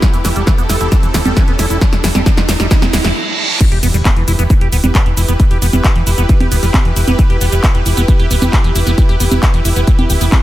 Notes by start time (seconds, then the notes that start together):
Already playing: E4 G4, riser
0.02 E3 A4, kick, snare, closed hi-hat, shaker
0.14 E1 E3, closed hi-hat, shaker
0.25 E1 E3, snare, open hi-hat, shaker
0.36 E1 G3, closed hi-hat, shaker
0.47 E3, kick, snare, closed hi-hat, shaker
0.58 E1 B3, closed hi-hat, shaker
0.69 E1 E4, snare, open hi-hat, shaker
0.81 E1 E4, closed hi-hat, shaker
0.92 E3, kick, snare, closed hi-hat, shaker
1.03 E1 E3, closed hi-hat, shaker
1.14 D1 E3, snare, open hi-hat, shaker
1.25 E1 G3, closed hi-hat, high conga, shaker
1.37 E3, kick, snare, closed hi-hat, shaker
1.48 E1 B3, closed hi-hat
1.59 E1 E4, snare, open hi-hat, shaker
1.70 E1 E4, closed hi-hat, shaker
1.81 E3, kick, snare, closed hi-hat, shaker
1.93 E1 E3, snare, closed hi-hat, shaker
2.04 E1 E3, snare, open hi-hat, shaker
2.15 E1 G3, snare, closed hi-hat, high conga, shaker
2.26 E3, kick, snare, closed hi-hat, shaker
2.37 E1 E3, snare, closed hi-hat, shaker
2.49 E1 E3, snare, open hi-hat, shaker
2.60 E1 G3, snare, closed hi-hat, shaker
2.71 E3, kick, snare, closed hi-hat, reverse cymbal, shaker
2.82 E1 E3, snare, closed hi-hat, high conga, shaker
2.93 D1 E3, snare, open hi-hat, shaker
3.05 E1 E3, snare, open hi-hat, shaker
3.61 E3 E4 G4 B4, kick, closed hi-hat, crash, impact, shaker
3.72 E1 G4, closed hi-hat
3.83 E1 B3, open hi-hat, shaker
3.94 E1 G3, closed hi-hat, shaker
4.05 B3, kick, clap, closed hi-hat, shaker
4.16 E1 E3, closed hi-hat
4.28 E1 E4, open hi-hat, shaker
4.39 E1 B3, closed hi-hat, shaker
4.50 E3, kick, closed hi-hat, shaker
4.61 E1 G4, closed hi-hat
4.72 D1 B3, open hi-hat, shaker
4.84 E1 G3, closed hi-hat, high conga, shaker
4.95 B3, kick, clap, closed hi-hat, shaker
5.06 E1 E3, closed hi-hat
5.17 E1 E4, open hi-hat, shaker
5.28 E1 B3, closed hi-hat, shaker
5.40 E3, kick, closed hi-hat, shaker
5.51 E1 G4, closed hi-hat
5.62 E1 B3, open hi-hat, shaker
5.73 E1 G3, closed hi-hat, high conga, shaker
5.84 B3, kick, clap, closed hi-hat, shaker
5.96 E1 E3, closed hi-hat
6.07 E1 E4, open hi-hat, shaker
6.18 E1 B3, closed hi-hat, shaker
6.29 E3, kick, closed hi-hat, shaker
6.40 E1 G4, closed hi-hat, high conga
6.52 D1 B3, open hi-hat, shaker
6.63 E1 G3, open hi-hat, shaker
6.74 B3, kick, clap, closed hi-hat, high conga, shaker
6.85 E1 E3, closed hi-hat
6.96 E1 E4, open hi-hat, shaker
7.08 E1 B3, closed hi-hat, high conga, shaker
7.19 E3, kick, closed hi-hat, shaker
7.30 E1 G4, closed hi-hat
7.41 E1 B3, open hi-hat, shaker
7.52 E1 G3, closed hi-hat, shaker
7.64 B3, kick, clap, closed hi-hat, shaker
7.75 E1 E3, closed hi-hat
7.86 E1 E4, open hi-hat, shaker
7.97 E1 B3, closed hi-hat, shaker
8.08 E3, kick, closed hi-hat, shaker
8.20 E1 G4, closed hi-hat
8.31 D1 B3, open hi-hat, shaker
8.42 E1 G3, closed hi-hat, high conga, shaker
8.53 B3, kick, clap, closed hi-hat, shaker
8.64 E1 E3, closed hi-hat
8.75 E1 E4, open hi-hat, shaker
8.87 E1 B3, closed hi-hat, shaker
8.98 E3, kick, closed hi-hat, shaker
9.09 E1 G4, closed hi-hat
9.20 E1 B3, open hi-hat, shaker
9.31 E1 G3, closed hi-hat, high conga, shaker
9.43 B3, kick, clap, closed hi-hat, shaker
9.54 E1 E3, closed hi-hat
9.65 E1 E4, open hi-hat, shaker
9.76 E1 B3, closed hi-hat, shaker
9.87 E3, kick, closed hi-hat, shaker
9.99 E1 G4, closed hi-hat, high conga
10.10 D1 G4, open hi-hat, shaker
10.21 E1 B3, open hi-hat, shaker
10.32 G3, kick, clap, closed hi-hat, high conga, shaker